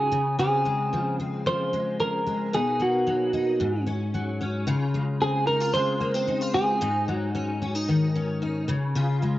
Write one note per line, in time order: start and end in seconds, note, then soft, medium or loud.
0.00 0.17 G#2 medium
0.00 0.11 C#3 medium
0.00 0.17 F#3 medium
0.00 0.43 C#4 medium
0.00 0.17 D#4 medium
0.00 0.35 G#4 loud
0.12 0.38 C#3 medium
0.39 2.53 C#3 medium
0.39 1.18 C4 medium
0.39 1.15 G#4 medium
0.65 1.72 G#3 medium
0.93 1.45 F3 medium
1.19 2.53 C4 medium
1.46 1.98 F3 medium
1.46 1.96 C5 loud
1.73 2.25 G#3 medium
2.00 2.58 F3 medium
2.00 2.54 A#4 loud
2.27 2.59 G#3 medium
2.54 3.60 B2 medium
2.54 3.32 D#4 medium
2.54 2.81 G#4 medium
2.80 3.65 A#3 medium
2.80 3.84 F#4 medium
3.07 3.66 F#3 medium
3.33 3.65 D#4 medium
3.60 4.73 G#2 medium
3.87 4.40 C#4 medium
4.14 4.73 F#3 medium
4.41 5.21 C#4 medium
4.67 6.81 C#3 medium
4.67 5.47 F4 medium
4.94 5.74 G#3 medium
5.21 6.00 C4 medium
5.21 5.46 G#4 medium
5.47 5.61 D#4 medium
5.47 5.73 A#4 loud
5.61 6.27 F4 medium
5.74 7.08 G#3 medium
5.74 6.54 C5 loud
6.01 6.14 A#3 medium
6.14 6.54 C4 medium
6.28 6.41 D#4 medium
6.41 6.81 F4 medium
6.55 6.87 C4 medium
6.55 7.04 G#4 medium
6.81 8.74 G#2 medium
6.81 7.61 D#4 medium
7.08 8.74 F#3 medium
7.35 7.61 C#4 medium
7.61 7.74 C#4 medium
7.74 8.41 D#4 medium
7.88 8.68 D#3 medium
8.15 9.39 C#4 medium
8.42 8.74 D#4 medium
8.68 8.94 C#3 medium
8.95 9.39 C#3 medium
8.95 9.39 F4 medium
9.22 9.39 G#3 medium